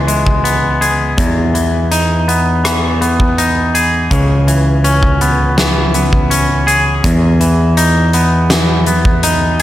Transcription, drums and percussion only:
0.08 closed hi-hat soft
0.27 kick medium
0.45 closed hi-hat medium
0.82 closed hi-hat soft
1.18 kick medium
1.18 closed hi-hat medium
1.55 closed hi-hat soft
1.92 closed hi-hat medium
2.29 closed hi-hat soft
2.65 cross-stick medium
2.65 closed hi-hat medium
3.02 closed hi-hat soft
3.20 kick medium
3.38 closed hi-hat medium
3.75 closed hi-hat soft
4.11 kick medium
4.11 closed hi-hat medium
4.48 closed hi-hat soft
4.84 closed hi-hat medium
5.03 kick medium
5.21 closed hi-hat soft
5.58 snare medium
5.58 closed hi-hat medium
5.94 closed hi-hat soft
6.13 kick medium
6.31 closed hi-hat medium
6.68 closed hi-hat soft
7.04 kick medium
7.04 closed hi-hat medium
7.41 closed hi-hat soft
7.77 closed hi-hat medium
8.13 closed hi-hat soft
8.50 snare medium
8.50 closed hi-hat medium
8.86 closed hi-hat soft
9.05 kick medium
9.23 closed hi-hat medium

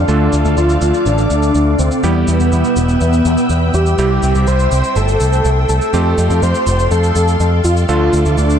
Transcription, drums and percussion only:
0.08 cabasa soft
0.33 cabasa medium
0.45 cabasa soft
0.57 cabasa soft
0.69 cabasa soft
0.82 cabasa medium
0.94 cabasa soft
1.06 cabasa soft
1.18 cabasa soft
1.30 cabasa medium
1.43 cabasa soft
1.55 cabasa soft
1.79 cabasa medium
1.91 cabasa soft
2.03 cabasa soft
2.28 cabasa medium
2.40 cabasa soft
2.52 cabasa soft
2.64 cabasa soft
2.77 cabasa medium
2.89 cabasa soft
3.01 cabasa soft
3.13 cabasa soft
3.25 cabasa medium
3.37 cabasa soft
3.50 cabasa soft
3.74 cabasa medium
3.86 cabasa soft
3.98 cabasa soft
4.23 cabasa medium
4.35 cabasa soft
4.47 cabasa soft
4.59 cabasa soft
4.72 cabasa medium
4.84 cabasa soft
4.96 cabasa soft
5.08 cabasa soft
5.20 cabasa medium
5.33 cabasa soft
5.45 cabasa soft
5.69 cabasa medium
5.81 cabasa soft
5.94 cabasa soft
6.18 cabasa medium
6.30 cabasa soft
6.43 cabasa soft
6.55 cabasa soft
6.67 cabasa medium
6.79 cabasa soft
6.91 cabasa soft
7.03 cabasa soft
7.16 cabasa medium
7.28 cabasa soft
7.40 cabasa soft
7.65 cabasa medium
7.77 cabasa soft
7.89 cabasa soft
8.13 cabasa medium
8.26 cabasa soft
8.38 cabasa soft
8.50 cabasa soft

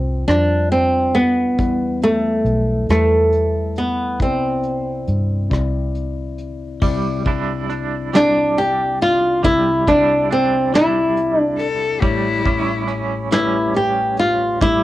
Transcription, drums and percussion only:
0.28 cross-stick medium
0.28 closed hi-hat soft
0.71 closed hi-hat soft
1.15 closed hi-hat soft
1.58 kick medium
1.58 closed hi-hat medium
2.02 closed hi-hat soft
2.45 closed hi-hat soft
2.89 cross-stick medium
2.89 closed hi-hat medium
3.32 closed hi-hat soft
3.76 closed hi-hat soft
4.19 kick medium
4.19 closed hi-hat medium
4.63 closed hi-hat soft
5.07 closed hi-hat soft
5.51 kick medium
5.51 cross-stick medium
5.51 closed hi-hat medium
5.95 closed hi-hat soft
6.38 closed hi-hat soft
6.81 kick medium
6.81 crash medium
7.25 kick medium
7.25 closed hi-hat soft
7.70 closed hi-hat soft
8.13 snare medium
8.13 closed hi-hat medium
8.57 closed hi-hat soft
9.01 closed hi-hat soft
9.44 kick medium
9.44 closed hi-hat medium
9.88 kick medium
9.88 closed hi-hat medium
10.31 closed hi-hat soft
10.74 snare medium
10.74 closed hi-hat medium
11.17 closed hi-hat soft
11.59 closed hi-hat soft
12.02 kick medium
12.02 closed hi-hat medium
12.45 kick medium
12.45 closed hi-hat soft
12.88 closed hi-hat soft
13.31 snare medium
13.31 closed hi-hat medium
13.74 closed hi-hat soft
14.17 closed hi-hat soft
14.60 kick medium
14.60 closed hi-hat medium

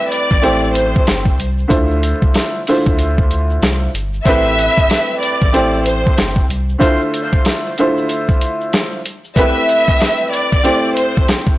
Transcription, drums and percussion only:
0.12 closed hi-hat medium
0.31 kick medium
0.31 shaker medium
0.43 closed hi-hat medium
0.43 shaker medium
0.63 shaker medium
0.75 closed hi-hat medium
0.75 shaker medium
0.95 kick medium
0.95 shaker medium
1.06 snare loud
1.06 closed hi-hat medium
1.06 shaker medium
1.25 kick medium
1.25 shaker soft
1.38 closed hi-hat medium
1.38 shaker medium
1.58 shaker medium
1.70 kick loud
1.70 closed hi-hat loud
1.70 shaker medium
1.90 shaker medium
2.03 closed hi-hat medium
2.22 kick medium
2.22 shaker medium
2.34 snare loud
2.34 closed hi-hat loud
2.34 shaker medium
2.54 shaker medium
2.67 open hi-hat medium
2.86 kick loud
2.86 shaker medium
2.98 closed hi-hat medium
2.98 shaker medium
3.18 kick medium
3.18 shaker medium
3.30 closed hi-hat medium
3.30 shaker medium
3.50 shaker medium
3.62 snare loud
3.62 closed hi-hat medium
3.62 shaker medium
3.82 shaker soft
3.94 closed hi-hat medium
3.94 shaker soft
4.14 shaker medium
4.26 kick loud
4.26 closed hi-hat loud
4.26 shaker medium
4.46 shaker medium
4.58 closed hi-hat medium
4.78 kick medium
4.78 shaker medium
4.90 snare loud
4.90 closed hi-hat loud
4.90 shaker medium
5.10 shaker soft
5.23 closed hi-hat medium
5.42 kick medium
5.42 shaker medium
5.54 closed hi-hat medium
5.54 shaker medium
5.74 shaker medium
5.86 closed hi-hat medium
5.86 shaker medium
6.05 kick medium
6.05 shaker medium
6.17 snare loud
6.17 closed hi-hat medium
6.17 shaker medium
6.36 kick medium
6.36 shaker soft
6.49 closed hi-hat medium
6.49 shaker soft
6.69 shaker medium
6.81 kick loud
6.81 closed hi-hat loud
6.81 shaker medium
7.01 shaker medium
7.14 closed hi-hat medium
7.33 kick loud
7.33 shaker medium
7.45 snare loud
7.45 closed hi-hat loud
7.45 shaker medium
7.65 shaker soft
7.78 closed hi-hat medium
7.97 shaker medium
8.09 closed hi-hat medium
8.09 shaker medium
8.29 kick loud
8.29 shaker medium
8.41 closed hi-hat medium
8.41 shaker medium
8.61 shaker medium
8.73 snare loud
8.73 closed hi-hat medium
8.73 shaker medium
8.92 shaker soft
9.04 closed hi-hat medium
9.04 shaker medium
9.24 shaker medium
9.36 kick loud
9.36 closed hi-hat loud
9.36 shaker medium
9.56 shaker medium
9.69 closed hi-hat medium
9.88 kick medium
9.88 shaker medium
10.00 snare loud
10.00 closed hi-hat loud
10.00 shaker medium
10.20 shaker soft
10.33 closed hi-hat medium
10.52 kick medium
10.52 shaker medium
10.64 closed hi-hat medium
10.64 shaker medium
10.85 shaker medium
10.96 closed hi-hat medium
10.96 shaker medium
11.16 kick loud
11.16 shaker medium
11.28 snare loud
11.28 closed hi-hat medium
11.28 shaker medium
11.47 kick medium
11.47 shaker soft

